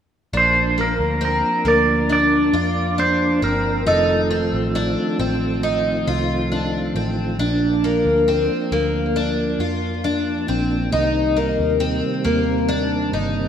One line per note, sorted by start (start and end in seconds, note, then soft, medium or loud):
0.33 0.96 A#1 medium
0.33 3.83 F3 medium
0.33 3.83 A#3 soft
0.33 0.78 D4 medium
0.33 3.83 D4 medium
0.33 0.81 C5 medium
0.78 1.22 A#3 medium
0.78 1.24 A#4 medium
0.99 1.41 D2 medium
1.21 1.66 C4 medium
1.25 1.69 A#4 medium
1.65 2.50 D2 medium
1.65 2.10 A#3 medium
1.65 2.11 D5 medium
2.09 2.54 D4 medium
2.09 3.02 D5 medium
2.53 3.38 F2 medium
2.53 2.98 F4 medium
2.98 3.42 D4 medium
2.98 3.44 C5 medium
3.42 3.84 G1 medium
3.42 3.86 C4 medium
3.42 3.87 A#4 medium
3.85 4.50 F1 medium
3.85 7.35 D#3 medium
3.85 10.88 F3 soft
3.85 7.35 A3 soft
3.85 7.35 C4 soft
3.85 4.30 D#4 medium
3.85 7.35 F4 medium
3.85 6.92 A4 medium
4.31 4.75 C4 medium
4.53 4.95 A1 medium
4.75 5.19 D4 medium
5.19 6.03 A1 medium
5.19 5.63 C4 medium
5.63 6.07 D#4 medium
6.07 6.92 C2 medium
6.07 6.51 F4 medium
6.52 6.95 D4 medium
6.95 7.37 A1 medium
6.95 7.39 C4 medium
7.39 8.02 A#1 medium
7.39 13.48 A#3 medium
7.39 7.84 D4 medium
7.39 10.89 D4 medium
7.84 8.28 A#3 medium
8.05 8.47 D2 medium
8.28 8.72 C4 medium
8.72 9.56 D2 medium
8.72 9.16 A#3 medium
9.16 9.60 D4 medium
9.59 10.44 F2 medium
9.59 10.04 F4 medium
10.04 10.48 D4 medium
10.48 10.91 A#1 medium
10.48 10.92 C4 medium
10.91 11.55 C2 loud
10.91 13.48 C3 medium
10.91 13.48 D#3 medium
10.91 13.48 G3 medium
10.91 13.48 C4 medium
10.91 11.37 D#4 medium
11.36 11.81 A#3 medium
11.59 12.01 D#2 medium
11.80 12.25 C4 medium
12.24 13.09 D#2 medium
12.24 12.69 A#3 medium
12.69 13.13 D4 medium
13.13 13.48 G1 medium
13.13 13.48 D#4 medium